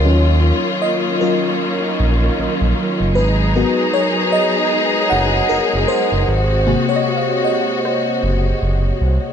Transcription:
0.00 3.12 F4 medium
0.00 0.85 C#5 medium
0.00 0.39 D#5 medium
0.00 0.40 F5 medium
0.04 0.52 D#2 loud
0.04 3.13 D#3 medium
0.04 6.24 F#3 medium
0.04 1.21 F#3 medium
0.04 3.13 A#3 medium
0.04 3.13 C#4 medium
0.04 1.21 C#4 medium
0.04 1.21 F4 medium
0.82 1.22 D#5 medium
1.21 1.57 F#3 medium
1.21 1.57 C#4 soft
1.21 1.57 F4 medium
1.21 2.73 A#4 medium
2.00 2.30 A#1 loud
2.39 2.48 A#1 soft
2.61 2.74 A#1 loud
3.00 3.18 F#1 medium
3.15 3.64 G#1 loud
3.15 9.33 G#3 medium
3.15 6.25 D#4 medium
3.15 6.25 G#4 medium
3.15 3.90 B4 medium
3.15 6.25 A#5 medium
3.55 4.68 B3 medium
3.55 4.69 F#4 medium
3.55 4.68 A#4 medium
3.93 4.34 C#5 loud
4.32 5.07 D#5 loud
5.10 5.41 F#1 medium
5.10 5.51 F#5 loud
5.49 5.60 F#1 soft
5.49 5.90 A#4 loud
5.73 5.86 F#1 medium
5.88 6.92 C5 medium
6.12 6.24 F#1 medium
6.28 6.76 G#1 loud
6.28 9.33 C3 medium
6.28 9.33 F#4 medium
6.67 9.33 C3 medium
6.67 9.33 A#3 medium
6.67 9.33 F#4 medium
6.67 8.43 G#4 medium
6.89 7.46 C#5 medium
6.96 8.63 D#5 medium
7.17 8.88 F5 medium
7.44 8.96 D#5 medium
7.85 9.33 C5 medium
8.23 8.53 F#1 medium
8.62 8.92 F#1 medium
9.01 9.18 C2 medium

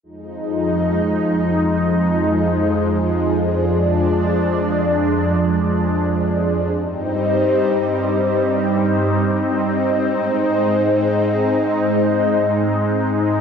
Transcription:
0.03 6.71 F2 medium
0.03 6.71 F3 medium
0.03 6.71 G#3 medium
0.03 3.36 D#4 medium
3.39 6.71 D4 medium
6.75 10.07 G2 medium
6.75 10.07 G3 medium
6.75 13.41 C4 medium
6.75 13.41 D#4 medium
10.10 13.41 G#2 medium
10.10 13.41 G#3 medium

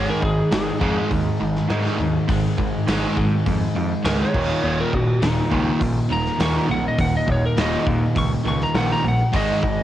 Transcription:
0.00 0.11 G#1 medium
0.00 0.21 G#2 medium
0.00 0.21 D#3 medium
0.00 0.21 G#3 loud
0.10 0.23 A#4 medium
0.22 0.41 G#1 loud
0.22 0.49 G#2 medium
0.22 0.49 D#3 medium
0.22 0.52 G#4 medium
0.22 kick medium
0.51 0.70 G#1 medium
0.51 0.78 G#2 medium
0.51 0.78 D#3 medium
0.51 1.10 G#4 loud
0.51 snare loud
0.51 open hi-hat medium
0.81 0.99 F2 medium
0.81 1.09 G#2 loud
0.81 1.09 D#3 loud
0.81 1.09 G#3 loud
0.81 kick medium
1.10 1.29 D#2 loud
1.10 1.37 G#2 medium
1.10 1.37 D#3 medium
1.10 kick medium
1.10 open hi-hat medium
1.40 1.58 G#1 medium
1.40 1.67 G#2 medium
1.40 1.67 D#3 medium
1.56 snare soft
1.70 1.88 G#2 medium
1.70 1.98 G#2 loud
1.70 1.98 D#3 loud
1.70 1.98 G#3 loud
1.70 snare loud
1.70 open hi-hat medium
1.85 snare soft
1.99 2.17 D#2 medium
1.99 2.26 G#2 medium
1.99 2.26 D#3 medium
2.28 2.47 G#1 loud
2.28 2.55 G#2 medium
2.28 2.55 D#3 medium
2.28 3.14 G#3 loud
2.28 kick loud
2.28 open hi-hat medium
2.58 2.76 G#1 medium
2.58 2.84 G#2 medium
2.58 2.85 D#3 medium
2.58 kick medium
2.87 3.05 G#1 medium
2.87 3.15 G#2 medium
2.87 3.16 D#3 medium
2.87 3.16 G#3 loud
2.87 snare loud
2.87 open hi-hat medium
3.15 3.43 G#2 medium
3.15 3.35 G#2 medium
3.15 3.43 D#3 medium
3.15 4.02 G#3 medium
3.15 kick medium
3.46 3.64 F2 medium
3.46 3.73 G#2 medium
3.46 3.73 D#3 medium
3.46 kick medium
3.46 open hi-hat medium
3.75 3.93 F2 medium
3.75 4.02 G#2 medium
3.75 4.02 D#3 medium
4.04 4.22 C#2 medium
4.04 4.32 G#2 medium
4.04 4.33 D#3 loud
4.04 4.33 G#3 loud
4.04 4.20 A#4 loud
4.04 snare loud
4.04 open hi-hat medium
4.23 4.78 C#5 loud
4.33 4.52 D#1 medium
4.33 4.61 D#2 medium
4.33 4.62 A#2 medium
4.33 4.62 D#3 loud
4.33 kick loud
4.33 crash loud
4.64 4.82 D#1 loud
4.64 4.91 D#2 medium
4.64 4.91 A#2 medium
4.64 4.92 D#3 medium
4.80 4.94 A#4 medium
4.93 5.11 D#1 loud
4.93 5.20 D#2 medium
4.93 5.20 A#2 medium
4.93 5.23 F#4 medium
4.93 kick medium
5.22 5.40 D#1 medium
5.22 5.49 D#2 medium
5.22 5.49 A#2 medium
5.22 6.08 D#3 medium
5.22 5.80 D#4 medium
5.22 snare loud
5.22 open hi-hat medium
5.51 5.70 C#2 loud
5.51 5.79 D#2 loud
5.51 5.79 A#2 loud
5.51 5.80 D#3 loud
5.51 kick medium
5.81 5.99 A#1 medium
5.81 6.08 D#2 medium
5.81 6.08 A#2 medium
5.81 kick medium
5.81 open hi-hat medium
6.09 6.28 D#1 medium
6.09 6.37 D#2 medium
6.09 6.37 A#2 medium
6.09 6.67 D#3 medium
6.09 6.40 A#5 loud
6.26 snare soft
6.40 6.58 D#2 medium
6.40 6.68 D#2 medium
6.40 6.68 A#2 loud
6.40 6.68 D#3 loud
6.40 6.58 C#6 medium
6.40 snare loud
6.40 open hi-hat medium
6.58 6.70 A#5 medium
6.69 6.87 A#1 medium
6.69 6.96 D#2 medium
6.69 6.96 A#2 medium
6.69 7.56 D#3 loud
6.69 6.85 F#5 loud
6.88 7.00 D#5 loud
6.98 7.17 D#1 medium
6.98 7.25 D#2 medium
6.98 7.25 A#2 medium
6.98 7.14 F#5 loud
6.98 kick loud
6.98 open hi-hat medium
7.17 7.29 D#5 loud
7.28 7.46 D#1 loud
7.28 7.54 D#2 medium
7.28 7.54 A#2 medium
7.28 kick medium
7.32 7.44 C#5 medium
7.46 7.59 A#4 medium
7.57 7.75 D#1 medium
7.57 7.85 D#2 medium
7.57 7.85 A#2 medium
7.57 7.85 D#3 loud
7.57 7.87 D#5 loud
7.57 snare loud
7.57 open hi-hat medium
7.87 8.05 D#2 medium
7.87 8.13 D#2 medium
7.87 8.14 A#2 medium
7.87 kick medium
8.16 8.34 C#2 loud
8.16 8.43 D#2 medium
8.16 8.43 A#2 medium
8.16 8.31 C#6 loud
8.16 kick medium
8.16 open hi-hat medium
8.44 8.64 C#2 medium
8.44 8.72 D#2 medium
8.44 8.72 A#2 medium
8.44 9.02 D#3 medium
8.48 8.61 C#6 loud
8.61 8.76 A#5 loud
8.61 snare soft
8.74 8.93 A#1 loud
8.74 9.02 D#2 loud
8.74 9.02 A#2 loud
8.74 9.03 D#3 loud
8.74 8.90 F#5 loud
8.74 snare loud
8.74 open hi-hat medium
8.91 9.05 A#5 loud
8.91 snare soft
9.04 9.22 A#1 medium
9.04 9.30 D#2 medium
9.04 9.31 A#2 medium
9.08 9.35 F#5 loud
9.32 9.52 G#1 loud
9.32 9.60 G#2 medium
9.32 9.61 D#3 loud
9.32 9.61 G#3 loud
9.32 9.83 D#5 medium
9.32 kick loud
9.32 open hi-hat medium
9.63 9.81 G#1 medium
9.63 9.83 G#2 medium
9.63 9.83 D#3 medium
9.63 kick medium

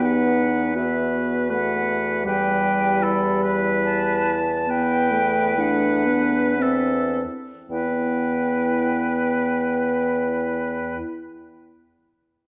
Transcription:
0.00 2.22 E2 soft
0.00 0.75 B3 soft
0.00 0.77 D#4 soft
0.00 0.73 B4 soft
0.05 0.76 F#5 medium
0.75 1.52 B3 soft
0.75 2.26 F#4 soft
0.75 1.49 B4 soft
0.75 1.54 E5 medium
1.50 2.26 A3 soft
1.50 2.24 B4 soft
1.50 2.26 F#5 medium
2.25 7.22 E2 soft
2.25 4.37 G3 soft
2.25 3.03 G4 soft
2.25 3.04 B4 soft
2.25 3.04 G5 medium
3.02 4.37 E4 soft
3.02 3.42 A4 soft
3.02 3.55 B5 medium
3.43 4.35 B4 soft
3.84 4.71 A5 medium
4.67 5.12 B3 soft
4.67 5.60 E4 soft
4.67 6.63 B4 soft
4.67 5.61 G5 medium
5.11 5.57 A3 soft
5.58 6.08 A3 soft
5.58 6.62 D4 soft
5.58 6.61 F#5 medium
6.06 6.57 B3 soft
6.58 7.23 C4 soft
6.58 7.25 C4 soft
6.58 7.17 E5 soft
6.62 7.26 A4 soft
7.69 10.98 E2 soft
7.69 10.98 B3 soft
7.69 10.99 E4 soft
7.69 11.00 B4 soft
7.69 10.98 G5 soft

